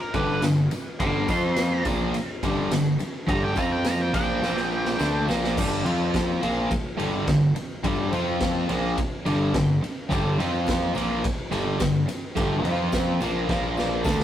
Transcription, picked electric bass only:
0.14 0.41 G1 medium
0.43 0.70 G1 medium
0.72 muted picked electric bass stroke soft
1.00 1.27 G1 loud
1.29 1.82 F2 loud
1.86 2.13 A#1 medium
2.14 muted picked electric bass stroke soft
2.43 2.70 G1 loud
2.71 2.98 G1 medium
3.00 muted picked electric bass stroke soft
3.28 3.55 G1 loud
3.57 4.10 F2 loud
4.14 4.41 A#1 medium
4.42 4.95 A#1 loud
5.01 5.27 D2 loud
5.28 5.55 A#1 medium
5.57 5.83 G1 medium
5.85 6.38 F2 loud
6.42 6.69 A#1 medium
6.71 muted picked electric bass stroke soft
6.99 7.25 G1 medium
7.28 7.54 G1 medium
7.55 muted picked electric bass stroke soft
7.84 8.10 G1 loud
8.12 8.65 F2 loud
8.70 8.96 A#1 medium
8.98 muted picked electric bass stroke soft
9.26 9.52 G1 medium
9.54 9.80 G1 medium
10.11 10.37 G1 loud
10.38 10.91 F2 loud
10.96 11.22 A#1 loud
11.24 muted picked electric bass stroke soft
11.52 11.78 G1 medium
11.81 12.06 G1 medium
12.08 muted picked electric bass stroke soft
12.37 12.63 G1 loud
12.65 13.17 F2 medium
13.20 13.47 A#1 medium
13.49 14.02 A#1 medium
14.05 14.24 D2 medium

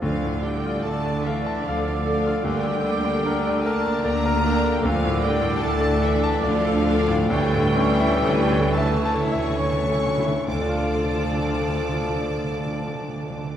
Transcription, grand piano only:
0.02 2.40 D2 medium
0.24 0.57 A2 medium
0.43 0.76 D4 medium
0.66 0.98 F4 medium
0.87 1.18 A4 medium
1.06 1.38 D5 medium
1.26 1.58 F5 medium
1.46 1.78 A5 medium
1.68 1.99 F5 medium
1.88 2.18 D5 medium
2.06 2.37 A4 medium
2.27 2.45 F4 medium
2.45 4.79 D2 medium
2.65 2.96 D3 medium
2.85 3.16 D4 medium
3.05 3.36 D3 medium
3.26 3.57 A#4 medium
3.47 3.77 D5 medium
3.66 3.96 A#4 medium
3.86 4.16 A#5 medium
4.04 4.35 D5 medium
4.26 4.56 A#4 medium
4.45 4.75 D4 medium
4.64 4.83 D3 medium
4.85 7.28 D2 medium
5.05 5.35 A2 medium
5.25 5.55 D4 medium
5.42 5.74 A2 medium
5.63 5.95 A4 medium
5.81 6.14 D5 medium
6.02 6.35 A4 medium
6.24 6.57 A5 loud
6.44 6.77 D5 medium
6.65 6.99 A4 loud
6.87 7.22 D4 medium
7.08 7.30 A2 medium
7.30 8.22 D2 medium
7.54 7.91 A2 medium
7.75 8.15 C#4 medium
8.00 8.40 E4 medium
8.26 8.67 A4 medium
8.52 8.94 C#5 medium
8.77 9.20 E5 medium
9.06 9.50 A5 medium
9.32 9.78 E5 medium
9.59 10.08 C#5 medium
9.90 10.36 A4 medium
10.19 10.47 E4 medium
10.48 13.50 D2 medium
10.55 13.57 D3 medium
10.62 13.57 D4 medium
10.69 13.57 F4 medium
10.76 13.57 A4 medium
10.83 13.57 F5 medium

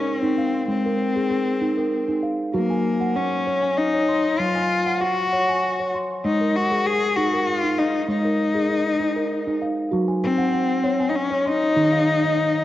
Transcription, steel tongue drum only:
0.00 0.37 A#4 medium
0.23 0.54 D#4 medium
0.38 0.85 F5 medium
0.68 1.00 G#3 medium
0.86 1.31 A#4 medium
1.16 1.29 G#4 medium
1.30 1.78 G#4 medium
1.61 1.92 D#4 medium
1.78 2.23 A#4 medium
2.08 2.39 D#4 medium
2.23 2.70 F5 medium
2.54 3.50 F#3 loud
2.54 2.85 F#4 medium
2.70 3.16 G#5 medium
3.01 3.15 F#5 medium
3.16 3.63 F#5 medium
3.47 3.78 C#5 medium
3.63 4.08 G#5 medium
3.94 4.25 C#5 medium
4.08 4.55 C6 medium
4.39 4.70 F#3 medium
4.56 5.01 G#5 medium
4.86 5.01 F#5 medium
5.02 5.48 F#5 medium
5.33 5.63 C#5 medium
5.49 5.94 G#5 medium
5.80 6.10 C#5 medium
5.95 6.41 C6 medium
6.25 7.19 G#3 medium
6.41 6.86 A#4 medium
6.71 6.86 G#4 medium
6.87 7.33 G#4 medium
7.17 7.47 D#4 medium
7.34 7.78 A#4 medium
7.64 7.94 D#4 medium
7.78 8.25 F5 medium
8.09 9.03 G#3 medium
8.25 8.70 A#4 medium
8.55 8.68 G#4 medium
8.69 9.16 G#4 medium
9.00 9.31 D#4 medium
9.17 9.62 A#4 medium
9.47 9.78 D#4 medium
9.62 10.08 F5 medium
9.92 10.87 F#3 medium
9.92 10.23 F#4 medium
10.08 10.53 G#5 medium
10.38 10.52 F#5 medium
10.54 11.00 F#5 medium
10.84 11.15 C#5 medium
11.00 11.45 G#5 medium
11.31 11.61 C#5 medium
11.46 11.92 C6 medium
11.76 12.64 D#3 medium
11.76 12.07 D#4 medium
11.92 12.37 F5 medium
12.23 12.36 D#5 medium
12.37 12.64 D#5 medium

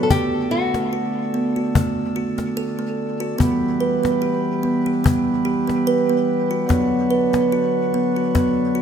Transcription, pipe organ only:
0.00 3.35 D3 medium
0.10 3.36 A3 medium
3.39 6.66 E3 medium
3.39 6.66 G3 medium
3.39 6.66 B3 medium
6.69 8.82 D3 medium
6.69 8.82 F#3 medium
6.69 8.82 B3 medium

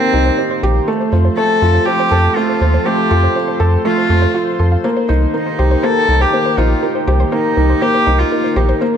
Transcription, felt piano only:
0.00 0.90 A#3 loud
0.00 0.13 D#4 loud
0.00 0.63 G4 loud
0.13 0.37 D#4 loud
0.39 0.62 D#4 medium
0.63 0.87 G4 loud
0.88 1.11 A3 loud
1.12 1.36 F4 medium
1.37 1.61 A3 loud
1.62 1.86 F4 loud
1.87 2.11 F4 medium
2.12 2.35 A4 medium
2.37 2.60 A3 loud
2.61 2.85 F4 medium
2.86 3.10 A3 loud
3.11 3.34 F4 loud
3.36 3.59 F4 medium
3.60 3.84 A4 loud
3.85 4.09 A3 loud
4.10 4.34 A3 medium
4.34 4.58 F4 loud
4.60 4.83 A4 medium
4.84 5.08 A#3 loud
5.09 5.33 D#4 loud
5.34 5.58 D#4 medium
5.59 5.82 G4 loud
5.83 6.07 A#3 loud
6.08 6.32 D#4 medium
6.33 6.57 A#3 medium
6.58 6.81 D#4 loud
6.83 7.07 D#4 medium
7.07 7.31 G4 loud
7.32 7.56 A#3 loud
7.57 7.81 D#4 medium
7.82 8.06 A#3 loud
8.07 8.30 D#4 loud
8.32 8.55 D#4 medium
8.56 8.80 G4 loud
8.82 8.97 A#3 loud

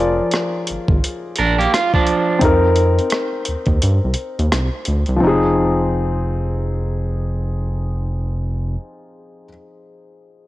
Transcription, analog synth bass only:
0.00 0.20 F1 medium
0.70 0.78 G#1 soft
0.89 1.00 G#1 medium
1.39 1.67 A#1 medium
2.42 2.99 F2 medium
3.48 3.56 D#2 soft
3.68 3.79 D#2 medium
3.83 4.00 G2 medium
4.04 4.15 C2 medium
4.39 4.50 D#2 medium
4.53 4.69 C2 medium
4.88 5.04 D2 medium
5.08 5.19 C2 medium
5.22 8.76 F1 medium

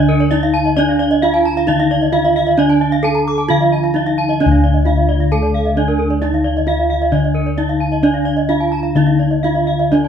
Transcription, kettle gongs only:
0.00 1.18 D3 medium
0.32 0.40 D#4 soft
0.77 2.09 D4 medium
1.23 1.31 D#4 soft
1.69 3.00 D3 medium
2.14 2.22 D#4 soft
2.59 3.91 D4 medium
3.05 3.13 D#4 soft
3.50 4.82 D3 medium
3.95 4.03 D#4 soft
4.41 5.73 D4 medium
4.46 7.11 D2 loud
4.86 4.94 D#4 soft
5.76 5.84 D#4 soft
6.22 6.65 D#4 medium
6.67 6.75 D#4 soft
7.12 8.45 D3 medium
7.57 7.65 D#4 soft
8.03 9.39 D4 medium
8.49 8.57 D#4 medium
8.95 10.08 D3 medium
9.44 9.52 D#4 soft
9.92 10.08 D4 medium

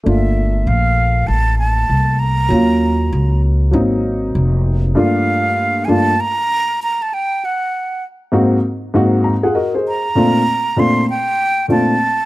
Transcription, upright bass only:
0.06 0.64 G1 medium
0.67 1.25 A#1 medium
1.28 1.86 A1 medium
1.90 2.48 C2 medium
2.50 3.09 D#2 medium
3.12 3.70 C#2 medium
3.73 4.31 G#1 medium
4.35 4.93 F1 medium

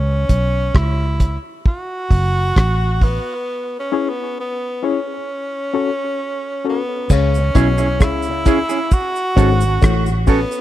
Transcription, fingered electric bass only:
0.00 0.25 C#2 loud
0.30 0.70 B1 medium
0.75 1.36 C#2 medium
2.11 2.51 F#1 medium
2.56 3.18 A1 loud
7.10 7.50 C#2 loud
7.55 8.01 B1 medium
8.01 8.62 C#2 medium
9.37 9.77 G#1 loud
9.83 10.44 A1 loud

